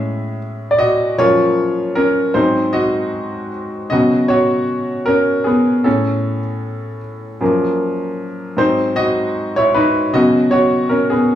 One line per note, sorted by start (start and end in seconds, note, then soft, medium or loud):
0.00 1.14 A2 soft
0.00 1.14 G#3 soft
0.00 1.15 C#4 soft
0.00 0.37 G#4 medium
0.00 0.36 E5 medium
0.71 0.78 D5 medium
0.78 1.16 F#4 medium
0.78 1.19 D#5 medium
1.18 2.31 F#2 soft
1.18 2.31 F3 soft
1.18 2.32 A#3 soft
1.18 1.93 F4 medium
1.18 1.92 C#5 medium
1.95 2.33 C#4 medium
1.95 2.36 A#4 medium
2.34 3.48 G#2 soft
2.34 3.48 F#3 soft
2.34 3.48 C4 medium
2.34 2.72 D#4 medium
2.34 2.75 C5 medium
2.73 3.87 F#4 medium
2.73 3.88 D#5 medium
3.90 5.03 C#3 soft
3.90 5.04 F#3 soft
3.90 5.04 B3 medium
3.90 4.28 F#4 medium
3.90 4.26 D#5 medium
4.28 5.04 F#4 medium
4.28 5.03 C#5 medium
5.06 5.44 C#4 medium
5.06 5.47 A#4 medium
5.44 5.83 B3 medium
5.44 5.84 G#4 medium
5.84 6.38 A2 soft
5.84 6.98 C#4 medium
5.84 6.38 G#4 soft
5.84 6.97 A4 medium
7.41 8.53 F#2 medium
7.41 8.54 F3 soft
7.41 8.54 A#3 medium
8.57 9.70 G#2 soft
8.57 9.70 F#3 soft
8.57 9.70 C4 medium
8.57 8.94 D#4 medium
8.57 8.98 C5 medium
8.96 9.52 F#4 medium
8.96 9.58 D#5 medium
9.56 9.74 E4 medium
9.56 9.75 C#5 medium
9.74 10.11 D#4 medium
9.74 10.14 B4 medium
10.13 11.35 C#3 medium
10.13 11.35 F#3 soft
10.13 11.10 B3 medium
10.13 10.50 F#4 medium
10.13 10.53 D#5 medium
10.51 10.88 F#4 medium
10.51 10.91 C#5 medium
10.89 11.10 C#4 medium
10.89 11.12 A#4 medium
11.10 11.35 B3 soft
11.10 11.35 G#4 medium